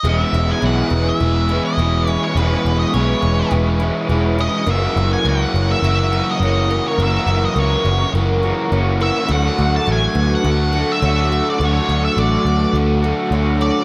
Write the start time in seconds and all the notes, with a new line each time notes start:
0.03 E1 E2 B2 E3 G#3 B3 C#4 E4 G#4 B4 G#5 C#6
0.07 E4 E5
0.33 E1 E4
0.51 G#5
0.60 B1 E3 G#3 B3 G#4
0.65 G#3 C#4 E4 F#5
0.90 E1 B4
1.08 E5
1.20 E1 E3 G#3 B3 G#4
1.24 E4
1.49 E3 G#3 B3 C#4 E4 G#4
1.53 G#3
1.65 D#5
1.78 E1 E3 G#3 B3 C#4 E4 B4
1.82 E4
2.06 E3 G#3 C#4 E4 G#4
2.11 C#5
2.24 C#5
2.35 E1 E2 B2 E3 G#3 B3 E4 G#4 B4
2.39 C#4
2.65 E1 E4
2.79 D#5
2.94 B1 E3 G#3 B3 C#4 E4 G#4 C#5
3.22 E1 B4
3.51 E1 E3 G#3 B3 E4 G#4
3.79 E3 G#3 B3 C#4 E4 G#4
4.08 E1 E3 G#3 B3 C#4 E4 B4
4.38 E3 G#3 C#4 E4 G#4 D#5
4.65 F#1 F#2 C#3 E3 A#3 C#4 F#4 A#4 C#6
4.69 A#3 E4 A#4 E5 F#5
4.96 F#1 F#4
5.13 G#5
5.25 C#2 C#3 E3 A#3 C#4 E4 F#4 A#4 F#5
5.54 F#1 C#5
5.71 E5
5.81 F#1 F#2 C#3 E3 A#3 E4 A#4
6.11 E3 A#3 C#4 E4 F#4 A#4
6.15 E3
6.31 D#5
6.39 F#1 C#3 E3 A#3 C#4 E4 C#5
6.44 F#4
6.69 E3 A#3 C#4 F#4 A#4
6.88 C#5
6.97 F#1 F#2 C#3 E3 A#3 E4 A#4
7.01 C#4 F#4 E5
7.26 F#1 F#4
7.45 D#5
7.55 C#2 C#3 E3 A#3 C#4 E4 F#4 A#4
7.60 C#5
7.85 F#1 C#5
8.13 F#1 F#2 C#3 E3 A#3 E4 A#4
8.43 E3 A#3 C#4 E4 F#4 A#4
8.70 F#1 C#3 E3 A#3 E4 C#5
8.75 C#4 F#4
9.01 E3 A#3 C#4 F#4 A#4 E5
9.28 D2 D3 F#3 A3 D4 A4 F#5
9.33 F#4
9.58 D2 F#4
9.76 A5
9.86 A1 D3 F#3 A3 D4 A4
9.90 F#4 G#5
10.15 D2 B4
10.35 F#5
10.42 D2 D3 F#3 A3 D4 A4
10.73 A3 D4 F#4 A4
10.77 F#3 A3
10.92 E5
11.01 D2 D3 F#3 A3 C#5
11.05 A3 D4 F#4
11.30 A3 F#4 A4
11.50 D5
11.59 D2 D3 F#3 A3 D4 A4
11.63 F#4 C#5
11.89 D2 F#4
12.05 E5
12.16 A1 D3 F#3 A3 D4 F#4 A4 D5
12.45 D2 B4
12.73 D2 D3 F#3 A3 D4 A4
13.02 F#3 A3 D4 F#4 A4
13.30 D2 D3 F#3 A3 D4 C#5
13.35 F#4
13.59 A3 C#4 F#4 A4 D5